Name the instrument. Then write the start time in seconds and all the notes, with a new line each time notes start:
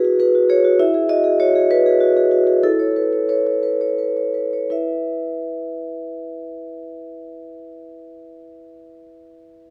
vibraphone
Already playing: E4 F#4 G#4 B4
0.04 F#4
0.20 G#4 B4
0.35 F#4
0.49 G#4 C#5
0.65 F#4
0.79 E4 E5
0.94 G#4
1.09 F#4 D#5
1.24 G#4
1.40 F#4 C#5
1.55 G#4
1.71 F#4 B4
1.86 G#4
2.00 F#4
2.17 G#4
2.32 F#4
2.47 G#4
2.63 E4 A4
2.79 C#5
2.96 B4
3.13 C#5
3.29 B4 C#5
3.47 C#5
3.63 B4
3.81 C#5
3.98 B4
4.17 C#5
4.34 B4
4.53 C#5
4.70 E4 B4 E5